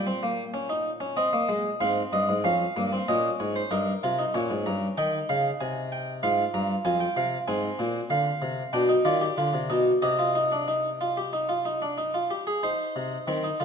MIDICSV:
0, 0, Header, 1, 2, 480
1, 0, Start_track
1, 0, Tempo, 634249
1, 1847, Time_signature, 4, 2, 24, 8
1, 3773, Tempo, 625000
1, 6653, Tempo, 648649
1, 10288, End_track
2, 0, Start_track
2, 0, Title_t, "Harpsichord"
2, 0, Program_c, 0, 6
2, 0, Note_on_c, 0, 46, 69
2, 0, Note_on_c, 0, 79, 81
2, 50, Note_on_c, 0, 60, 92
2, 166, Note_off_c, 0, 60, 0
2, 173, Note_on_c, 0, 58, 90
2, 318, Note_off_c, 0, 58, 0
2, 407, Note_on_c, 0, 61, 99
2, 521, Note_off_c, 0, 61, 0
2, 526, Note_on_c, 0, 63, 86
2, 673, Note_off_c, 0, 63, 0
2, 760, Note_on_c, 0, 61, 90
2, 854, Note_off_c, 0, 79, 0
2, 877, Note_off_c, 0, 61, 0
2, 883, Note_on_c, 0, 75, 90
2, 884, Note_on_c, 0, 60, 99
2, 999, Note_off_c, 0, 60, 0
2, 1006, Note_on_c, 0, 58, 93
2, 1121, Note_off_c, 0, 58, 0
2, 1125, Note_on_c, 0, 56, 94
2, 1274, Note_off_c, 0, 56, 0
2, 1334, Note_off_c, 0, 46, 0
2, 1350, Note_off_c, 0, 75, 0
2, 1366, Note_on_c, 0, 44, 80
2, 1367, Note_on_c, 0, 77, 82
2, 1368, Note_on_c, 0, 60, 93
2, 1515, Note_off_c, 0, 44, 0
2, 1516, Note_off_c, 0, 77, 0
2, 1609, Note_on_c, 0, 43, 68
2, 1611, Note_on_c, 0, 75, 74
2, 1725, Note_off_c, 0, 43, 0
2, 1733, Note_on_c, 0, 44, 72
2, 1759, Note_off_c, 0, 75, 0
2, 1836, Note_off_c, 0, 60, 0
2, 1847, Note_off_c, 0, 44, 0
2, 1847, Note_on_c, 0, 61, 69
2, 1850, Note_on_c, 0, 41, 78
2, 1850, Note_on_c, 0, 77, 68
2, 1998, Note_off_c, 0, 61, 0
2, 2000, Note_off_c, 0, 41, 0
2, 2091, Note_on_c, 0, 58, 65
2, 2093, Note_on_c, 0, 43, 67
2, 2209, Note_off_c, 0, 58, 0
2, 2214, Note_on_c, 0, 60, 60
2, 2243, Note_off_c, 0, 43, 0
2, 2321, Note_off_c, 0, 77, 0
2, 2332, Note_off_c, 0, 60, 0
2, 2334, Note_on_c, 0, 46, 78
2, 2334, Note_on_c, 0, 75, 70
2, 2335, Note_on_c, 0, 61, 66
2, 2484, Note_off_c, 0, 46, 0
2, 2484, Note_off_c, 0, 75, 0
2, 2573, Note_on_c, 0, 73, 64
2, 2574, Note_on_c, 0, 44, 74
2, 2690, Note_off_c, 0, 73, 0
2, 2692, Note_on_c, 0, 72, 62
2, 2723, Note_off_c, 0, 44, 0
2, 2800, Note_off_c, 0, 61, 0
2, 2807, Note_on_c, 0, 43, 78
2, 2807, Note_on_c, 0, 70, 66
2, 2808, Note_on_c, 0, 63, 67
2, 2809, Note_off_c, 0, 72, 0
2, 2958, Note_off_c, 0, 43, 0
2, 2958, Note_off_c, 0, 63, 0
2, 3053, Note_on_c, 0, 65, 69
2, 3054, Note_on_c, 0, 48, 77
2, 3168, Note_on_c, 0, 63, 62
2, 3170, Note_off_c, 0, 65, 0
2, 3202, Note_off_c, 0, 48, 0
2, 3275, Note_off_c, 0, 70, 0
2, 3287, Note_off_c, 0, 63, 0
2, 3287, Note_on_c, 0, 61, 67
2, 3288, Note_on_c, 0, 73, 66
2, 3289, Note_on_c, 0, 46, 74
2, 3407, Note_off_c, 0, 46, 0
2, 3408, Note_on_c, 0, 44, 68
2, 3438, Note_off_c, 0, 73, 0
2, 3526, Note_off_c, 0, 44, 0
2, 3527, Note_on_c, 0, 82, 65
2, 3529, Note_on_c, 0, 43, 71
2, 3677, Note_off_c, 0, 82, 0
2, 3678, Note_off_c, 0, 43, 0
2, 3753, Note_off_c, 0, 61, 0
2, 3766, Note_on_c, 0, 51, 75
2, 3766, Note_on_c, 0, 79, 86
2, 3767, Note_on_c, 0, 63, 75
2, 3917, Note_off_c, 0, 51, 0
2, 3917, Note_off_c, 0, 79, 0
2, 4009, Note_on_c, 0, 49, 70
2, 4009, Note_on_c, 0, 77, 77
2, 4159, Note_off_c, 0, 49, 0
2, 4159, Note_off_c, 0, 77, 0
2, 4249, Note_on_c, 0, 80, 80
2, 4251, Note_on_c, 0, 48, 69
2, 4399, Note_off_c, 0, 80, 0
2, 4492, Note_on_c, 0, 79, 80
2, 4641, Note_off_c, 0, 79, 0
2, 4701, Note_off_c, 0, 63, 0
2, 4717, Note_off_c, 0, 48, 0
2, 4729, Note_on_c, 0, 44, 77
2, 4729, Note_on_c, 0, 77, 88
2, 4730, Note_on_c, 0, 65, 80
2, 4878, Note_off_c, 0, 44, 0
2, 4878, Note_off_c, 0, 77, 0
2, 4967, Note_on_c, 0, 43, 74
2, 4968, Note_on_c, 0, 82, 82
2, 5117, Note_off_c, 0, 43, 0
2, 5117, Note_off_c, 0, 82, 0
2, 5195, Note_off_c, 0, 65, 0
2, 5203, Note_on_c, 0, 41, 71
2, 5204, Note_on_c, 0, 80, 91
2, 5206, Note_on_c, 0, 65, 74
2, 5323, Note_off_c, 0, 80, 0
2, 5323, Note_on_c, 0, 79, 82
2, 5353, Note_off_c, 0, 41, 0
2, 5441, Note_off_c, 0, 79, 0
2, 5447, Note_on_c, 0, 48, 73
2, 5449, Note_on_c, 0, 77, 77
2, 5595, Note_off_c, 0, 48, 0
2, 5597, Note_off_c, 0, 77, 0
2, 5670, Note_off_c, 0, 65, 0
2, 5686, Note_on_c, 0, 60, 85
2, 5687, Note_on_c, 0, 44, 95
2, 5687, Note_on_c, 0, 80, 88
2, 5836, Note_off_c, 0, 44, 0
2, 5928, Note_on_c, 0, 46, 86
2, 6077, Note_off_c, 0, 46, 0
2, 6154, Note_off_c, 0, 80, 0
2, 6165, Note_on_c, 0, 50, 86
2, 6167, Note_on_c, 0, 77, 84
2, 6315, Note_off_c, 0, 50, 0
2, 6409, Note_on_c, 0, 48, 83
2, 6559, Note_off_c, 0, 48, 0
2, 6621, Note_off_c, 0, 60, 0
2, 6636, Note_off_c, 0, 77, 0
2, 6648, Note_on_c, 0, 62, 84
2, 6650, Note_on_c, 0, 47, 89
2, 6650, Note_on_c, 0, 79, 82
2, 6763, Note_off_c, 0, 62, 0
2, 6766, Note_on_c, 0, 63, 76
2, 6796, Note_off_c, 0, 47, 0
2, 6796, Note_off_c, 0, 79, 0
2, 6881, Note_off_c, 0, 63, 0
2, 6885, Note_on_c, 0, 51, 86
2, 6886, Note_on_c, 0, 65, 75
2, 6887, Note_on_c, 0, 74, 73
2, 7001, Note_off_c, 0, 65, 0
2, 7006, Note_on_c, 0, 67, 71
2, 7032, Note_off_c, 0, 51, 0
2, 7120, Note_off_c, 0, 67, 0
2, 7127, Note_on_c, 0, 50, 81
2, 7128, Note_on_c, 0, 65, 71
2, 7240, Note_off_c, 0, 50, 0
2, 7245, Note_on_c, 0, 48, 72
2, 7274, Note_off_c, 0, 65, 0
2, 7360, Note_off_c, 0, 48, 0
2, 7365, Note_on_c, 0, 47, 75
2, 7365, Note_on_c, 0, 63, 65
2, 7513, Note_off_c, 0, 63, 0
2, 7514, Note_off_c, 0, 47, 0
2, 7581, Note_off_c, 0, 74, 0
2, 7605, Note_on_c, 0, 75, 68
2, 7606, Note_on_c, 0, 67, 75
2, 7607, Note_on_c, 0, 48, 71
2, 7722, Note_off_c, 0, 67, 0
2, 7728, Note_on_c, 0, 65, 66
2, 7844, Note_off_c, 0, 65, 0
2, 7850, Note_on_c, 0, 63, 65
2, 7965, Note_off_c, 0, 63, 0
2, 7972, Note_on_c, 0, 62, 61
2, 8087, Note_off_c, 0, 62, 0
2, 8091, Note_on_c, 0, 63, 62
2, 8239, Note_off_c, 0, 63, 0
2, 8335, Note_on_c, 0, 65, 60
2, 8448, Note_off_c, 0, 65, 0
2, 8457, Note_on_c, 0, 67, 62
2, 8568, Note_off_c, 0, 67, 0
2, 8573, Note_on_c, 0, 63, 64
2, 8686, Note_off_c, 0, 63, 0
2, 8691, Note_on_c, 0, 65, 62
2, 8805, Note_off_c, 0, 65, 0
2, 8812, Note_on_c, 0, 63, 62
2, 8926, Note_off_c, 0, 63, 0
2, 8935, Note_on_c, 0, 62, 59
2, 9047, Note_off_c, 0, 62, 0
2, 9051, Note_on_c, 0, 63, 60
2, 9166, Note_off_c, 0, 63, 0
2, 9174, Note_on_c, 0, 65, 59
2, 9261, Note_off_c, 0, 75, 0
2, 9262, Note_off_c, 0, 48, 0
2, 9289, Note_off_c, 0, 65, 0
2, 9295, Note_on_c, 0, 67, 60
2, 9411, Note_off_c, 0, 67, 0
2, 9416, Note_on_c, 0, 68, 60
2, 9532, Note_off_c, 0, 68, 0
2, 9537, Note_on_c, 0, 63, 63
2, 9537, Note_on_c, 0, 72, 65
2, 9778, Note_on_c, 0, 48, 75
2, 9925, Note_off_c, 0, 48, 0
2, 10001, Note_off_c, 0, 63, 0
2, 10012, Note_on_c, 0, 51, 77
2, 10014, Note_on_c, 0, 60, 64
2, 10129, Note_off_c, 0, 60, 0
2, 10132, Note_on_c, 0, 63, 57
2, 10159, Note_off_c, 0, 51, 0
2, 10247, Note_off_c, 0, 63, 0
2, 10253, Note_on_c, 0, 65, 60
2, 10254, Note_on_c, 0, 50, 73
2, 10288, Note_off_c, 0, 50, 0
2, 10288, Note_off_c, 0, 65, 0
2, 10288, Note_off_c, 0, 72, 0
2, 10288, End_track
0, 0, End_of_file